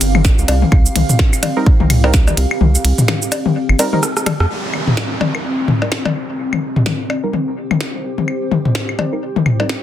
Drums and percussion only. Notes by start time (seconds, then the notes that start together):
0.01 closed hi-hat, ride, shaker
0.15 high tom, high woodblock
0.25 kick, snare, shaker
0.39 shaker
0.48 closed hi-hat, ride, percussion blips
0.62 high tom
0.72 kick, high woodblock
0.86 shaker
0.96 closed hi-hat, high tom, ride
1.09 mid tom, shaker
1.19 kick, snare
1.33 high woodblock, shaker
1.43 closed hi-hat, high tom, ride, percussion blips
1.66 kick
1.80 high tom
1.90 closed hi-hat, mid tom, ride, high woodblock
2.04 percussion blips
2.14 kick, snare, shaker
2.27 high tom, percussion blips, shaker
2.37 closed hi-hat, ride
2.51 high woodblock
2.61 high tom
2.75 shaker
2.85 closed hi-hat, ride
2.98 mid tom, shaker
3.08 snare, high tom, high woodblock
3.22 shaker
3.32 closed hi-hat, ride, percussion blips, shaker
3.46 high tom
3.69 high woodblock
3.79 closed hi-hat, ride, percussion blips, shaker
3.93 high tom
4.03 cross-stick, shaker
4.17 cross-stick, shaker
4.26 cross-stick, closed hi-hat, high tom, ride, percussion blips, high woodblock
4.40 cross-stick
4.74 high woodblock
4.87 mid tom, high tom
4.97 snare
5.21 high tom, percussion blips
5.35 high woodblock
5.68 mid tom, high tom
5.82 percussion blips
5.92 snare, high woodblock
6.05 high tom, percussion blips
6.53 high tom, high woodblock
6.76 mid tom
6.86 snare, high tom
7.10 percussion blips, high woodblock
7.33 high tom
7.71 high tom, high woodblock
7.81 snare
8.18 high tom
8.28 high woodblock
8.51 high tom
8.65 mid tom
8.75 snare
8.89 high woodblock
8.99 high tom, percussion blips
9.36 high tom
9.46 mid tom, high woodblock
9.60 percussion blips
9.69 snare